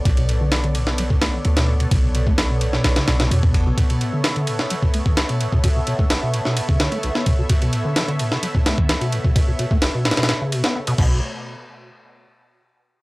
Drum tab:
CC |--------------------------------|--------------------------------|--------------------------------|--------------------------------|
RD |x-x-x---x-x-x---x---x---x-x---x-|x---x---x---x---x-x-x-x-x---x---|x-x-x---x-x-x---x---x---x-x-x---|x---x---x---x---x---x-x-x---x---|
SD |--------o-----o-----o-----o-----|--------o-----o-o-o-o-o---------|--------o-----o---------o-------|--------o-----o-----o-----o-----|
BD |o-----------------o-------------|o-----o-------------------o-o---|o-----------------o---o-------o-|o-----o-----------o---------o---|

CC |--------------------------------|----------------------------x---|--------------------------------|
RD |x-x-x---x-x-x---x---x---x-x-x---|x---x---x---xxxxx---x-x---x-----|--------------------------------|
SD |--------o-----o-----o---o-------|--------o---ooooo-----o---------|--------------------------------|
BD |o-----------------o---o-------o-|o-----o---------------------o---|--------------------------------|